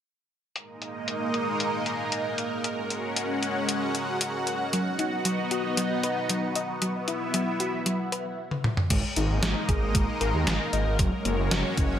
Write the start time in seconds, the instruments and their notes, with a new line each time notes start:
0.56 analog synth pad G#3 A#3 D#4 A#4 D#5, closed hi-hat
0.82 closed hi-hat
1.08 closed hi-hat
1.34 closed hi-hat
1.60 closed hi-hat
1.86 closed hi-hat
2.12 closed hi-hat
2.38 closed hi-hat
2.64 analog synth pad G#3 C#4 F#4 F#5, closed hi-hat
2.90 closed hi-hat
3.16 closed hi-hat
3.43 closed hi-hat
3.69 closed hi-hat
3.95 closed hi-hat
4.21 closed hi-hat
4.47 closed hi-hat
4.73 synth arpeggio sound F#3, analog synth pad B3 D#4 D#5, closed hi-hat
4.99 synth arpeggio sound D#4, closed hi-hat
5.25 synth arpeggio sound F#3, closed hi-hat
5.51 synth arpeggio sound F#4, closed hi-hat
5.77 synth arpeggio sound F#3, closed hi-hat
6.03 synth arpeggio sound B4, closed hi-hat
6.29 synth arpeggio sound F#3, closed hi-hat
6.55 synth arpeggio sound D#5, closed hi-hat
6.82 synth arpeggio sound F#3, analog synth pad B3 E4 E5, closed hi-hat
7.08 synth arpeggio sound E4, closed hi-hat
7.34 synth arpeggio sound F#3, closed hi-hat
7.60 synth arpeggio sound F#4, closed hi-hat
7.86 synth arpeggio sound F#3, closed hi-hat
8.12 synth arpeggio sound B4, closed hi-hat
8.51 high tom
8.64 mid tom
8.77 mid tom
8.90 detuned saw bass G#1, analog synth pad G#3 A#3 D#4 A#4 D#5, synth arpeggio sound G#3, kick, closed hi-hat, crash
9.16 detuned saw bass G#1, synth arpeggio sound D#4, closed hi-hat
9.30 detuned saw bass G#1
9.43 detuned saw bass G#1, synth arpeggio sound G#3, snare, closed hi-hat
9.69 detuned saw bass G#1, synth arpeggio sound G#4, kick, closed hi-hat
9.82 detuned saw bass G#1
9.95 detuned saw bass G#1, synth arpeggio sound G#3, kick, closed hi-hat
10.21 detuned saw bass G#1, synth arpeggio sound A#4, closed hi-hat
10.34 detuned saw bass D#2
10.47 detuned saw bass G#1, synth arpeggio sound G#3, snare, closed hi-hat
10.73 detuned saw bass G#1, synth arpeggio sound D#5, closed hi-hat
10.87 detuned saw bass G#1
10.99 detuned saw bass F#1, synth arpeggio sound F#3, analog synth pad G#3 C#4 F#4 C#5, kick, closed hi-hat
11.25 detuned saw bass F#1, synth arpeggio sound A#3, closed hi-hat
11.39 detuned saw bass F#1
11.51 detuned saw bass F#1, synth arpeggio sound F#3, snare, closed hi-hat
11.77 detuned saw bass F#1, synth arpeggio sound C#4, kick, closed hi-hat
11.91 detuned saw bass F#1